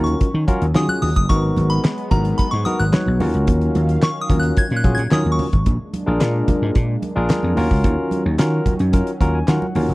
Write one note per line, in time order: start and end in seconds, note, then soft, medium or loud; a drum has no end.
0.00 0.13 D#2 loud
0.00 1.28 D#3 medium
0.00 5.63 F#3 medium
0.00 0.27 C#4 medium
0.00 1.28 C#4 medium
0.00 0.27 F4 medium
0.00 0.27 F#4 medium
0.00 0.28 A#4 medium
0.00 0.29 C#6 medium
0.06 closed hi-hat soft
0.20 muted slap bass stroke soft
0.20 kick loud
0.20 closed hi-hat medium
0.20 muted conga soft
0.34 0.44 D#3 loud
0.48 0.65 C#4 loud
0.48 0.65 F4 loud
0.48 0.65 F#4 medium
0.48 0.65 A#4 loud
0.48 kick medium
0.48 closed hi-hat medium
0.48 muted conga soft
0.48 high conga medium
0.62 0.72 D#2 medium
0.62 closed hi-hat medium
0.74 0.85 D#3 loud
0.74 1.09 C#4 medium
0.74 1.09 F4 medium
0.74 1.09 F#4 medium
0.74 1.09 G#4 medium
0.74 0.90 D#6 medium
0.74 snare loud
0.74 clap medium
0.74 high conga medium
0.88 1.02 F#6 loud
0.88 high conga medium
1.02 1.13 D#2 medium
1.02 1.15 D#6 medium
1.02 open hi-hat medium
1.02 low conga medium
1.16 1.26 F#1 loud
1.16 1.30 D#6 loud
1.16 kick medium
1.16 closed hi-hat medium
1.29 1.50 G#1 loud
1.29 3.19 G#3 medium
1.29 1.36 A#3 medium
1.29 3.19 B3 medium
1.29 1.81 D#4 medium
1.29 1.81 F#4 medium
1.29 1.81 A#4 medium
1.29 1.72 C#6 loud
1.29 kick loud
1.29 closed hi-hat medium
1.36 1.84 B3 medium
1.57 1.77 G#1 loud
1.57 closed hi-hat medium
1.57 high conga medium
1.70 2.12 B5 medium
1.70 closed hi-hat medium
1.84 snare loud
1.84 clap medium
1.84 muted conga soft
1.98 closed hi-hat soft
2.11 2.32 G#1 loud
2.11 2.45 B3 medium
2.11 2.45 D#4 medium
2.11 2.46 F#4 medium
2.11 2.46 A#4 medium
2.11 2.39 A#5 medium
2.11 kick medium
2.11 closed hi-hat medium
2.11 muted conga soft
2.11 high conga medium
2.11 low conga medium
2.25 closed hi-hat medium
2.38 2.52 B5 medium
2.38 kick loud
2.38 closed hi-hat medium
2.51 2.63 G#2 medium
2.51 2.66 C#6 medium
2.51 closed hi-hat soft
2.65 2.83 B3 medium
2.65 2.83 D#4 medium
2.65 2.83 F#4 medium
2.65 2.83 A#4 loud
2.65 2.80 D#6 medium
2.65 closed hi-hat medium
2.65 high conga medium
2.79 2.90 G#1 loud
2.79 3.30 F#6 medium
2.79 closed hi-hat medium
2.93 3.20 B3 medium
2.93 3.21 D#4 medium
2.93 3.19 F#4 medium
2.93 3.21 C#5 medium
2.93 snare loud
2.93 clap medium
2.93 high conga medium
3.06 3.17 B1 medium
3.06 high conga medium
3.20 3.31 D#2 loud
3.20 5.64 D#3 medium
3.20 4.08 C#4 medium
3.20 5.64 C#4 medium
3.20 4.08 F4 medium
3.20 4.08 F#4 medium
3.20 4.08 A#4 medium
3.20 5.64 F5 medium
3.20 open hi-hat medium
3.20 muted conga soft
3.20 low conga medium
3.34 3.48 C#2 medium
3.34 closed hi-hat medium
3.47 3.68 D#2 loud
3.47 kick loud
3.47 closed hi-hat medium
3.47 muted conga soft
3.47 low conga medium
3.61 closed hi-hat soft
3.75 3.96 D#2 loud
3.75 closed hi-hat medium
3.75 muted conga soft
3.75 high conga medium
3.89 closed hi-hat medium
4.02 4.22 C#6 medium
4.02 snare loud
4.02 clap medium
4.02 muted conga soft
4.21 4.40 D#6 medium
4.30 4.50 D#2 loud
4.30 4.64 C#4 medium
4.30 4.64 F4 medium
4.30 4.64 F#4 medium
4.30 4.64 A#4 medium
4.30 kick loud
4.30 closed hi-hat medium
4.30 muted conga soft
4.30 high conga medium
4.30 low conga medium
4.40 4.58 F#6 medium
4.40 closed hi-hat medium
4.57 4.76 G#6 loud
4.57 kick loud
4.57 closed hi-hat medium
4.70 4.81 A#2 loud
4.70 closed hi-hat soft
4.76 4.95 F#6 medium
4.84 4.94 A#1 medium
4.84 5.01 C#4 medium
4.84 5.01 F4 medium
4.84 5.01 F#4 medium
4.84 5.02 G#4 loud
4.84 kick loud
4.84 closed hi-hat medium
4.84 high conga medium
4.95 5.08 A#2 medium
4.95 5.13 G#6 loud
4.95 closed hi-hat medium
5.11 5.22 D#3 loud
5.11 5.46 C#4 medium
5.11 5.46 F4 medium
5.11 5.46 F#4 medium
5.11 5.46 A#4 medium
5.11 5.31 D#6 medium
5.11 snare loud
5.11 clap medium
5.11 muted conga soft
5.11 high conga medium
5.25 5.36 D#2 loud
5.25 high conga medium
5.32 5.65 C#6 medium
5.39 open hi-hat medium
5.39 muted conga soft
5.39 low conga medium
5.53 5.63 G#1 medium
5.53 kick loud
5.53 closed hi-hat medium
5.66 5.77 A#1 loud
5.66 7.56 G#3 medium
5.66 7.56 A#3 medium
5.66 7.56 D4 medium
5.66 kick loud
5.66 closed hi-hat medium
5.66 muted conga soft
5.66 low conga medium
5.93 closed hi-hat medium
5.93 high conga medium
6.06 6.17 A#1 medium
6.06 6.75 D4 medium
6.06 6.75 F4 medium
6.06 6.75 G#4 medium
6.06 6.75 A#4 loud
6.20 6.41 A#2 medium
6.20 snare loud
6.20 clap medium
6.20 closed hi-hat medium
6.20 muted conga soft
6.48 kick medium
6.48 closed hi-hat medium
6.48 muted conga soft
6.48 high conga medium
6.48 low conga medium
6.62 6.72 G#2 medium
6.75 6.96 A#2 loud
6.75 kick loud
6.75 closed hi-hat medium
6.75 muted conga soft
7.02 closed hi-hat medium
7.02 high conga medium
7.15 7.27 A#1 medium
7.15 7.57 D4 loud
7.15 7.56 F4 loud
7.15 7.57 G#4 loud
7.15 7.56 A#4 loud
7.29 snare loud
7.29 clap medium
7.29 closed hi-hat medium
7.29 muted conga soft
7.29 high conga medium
7.43 7.54 F2 medium
7.43 high conga medium
7.57 7.67 D#2 medium
7.57 9.94 D#3 medium
7.57 9.94 F#3 medium
7.57 8.22 C#4 loud
7.57 9.94 C#4 medium
7.57 8.22 F4 medium
7.57 8.23 F#4 medium
7.57 8.23 A#4 loud
7.57 open hi-hat medium
7.57 low conga medium
7.71 7.81 C#2 medium
7.71 kick medium
7.84 7.95 D#2 loud
7.84 kick loud
7.84 closed hi-hat medium
7.84 low conga medium
8.11 closed hi-hat medium
8.11 muted conga soft
8.11 high conga medium
8.26 8.36 D#2 medium
8.39 8.59 D#3 loud
8.39 8.73 C#4 medium
8.39 8.73 F4 medium
8.39 8.73 F#4 medium
8.39 8.73 A#4 loud
8.39 snare loud
8.39 clap medium
8.39 closed hi-hat medium
8.66 kick loud
8.66 closed hi-hat medium
8.66 muted conga soft
8.66 high conga medium
8.66 low conga medium
8.79 9.00 F#2 medium
8.79 closed hi-hat soft
8.93 9.10 C#4 medium
8.93 9.10 F4 medium
8.93 9.10 F#4 medium
8.93 9.11 A#4 medium
8.93 kick loud
8.93 closed hi-hat medium
8.93 muted conga soft
9.07 closed hi-hat medium
9.20 9.41 D#2 medium
9.20 9.38 C#4 medium
9.20 9.38 F4 medium
9.20 9.38 F#4 medium
9.20 9.38 A#4 loud
9.20 9.34 A#5 medium
9.20 kick loud
9.20 closed hi-hat medium
9.20 high conga medium
9.35 9.47 G#5 medium
9.48 9.58 D#3 medium
9.48 9.65 C#4 medium
9.48 9.65 F4 medium
9.48 9.65 F#4 medium
9.48 9.66 A#4 medium
9.48 9.94 F#5 medium
9.48 snare loud
9.48 clap medium
9.48 closed hi-hat medium
9.48 high conga medium
9.62 high conga medium
9.75 9.85 D#2 medium
9.75 9.94 C#4 medium
9.75 9.94 F4 medium
9.75 9.94 F#4 medium
9.75 9.94 A#4 medium
9.75 open hi-hat medium
9.75 muted conga soft
9.75 low conga medium
9.89 9.94 F#1 medium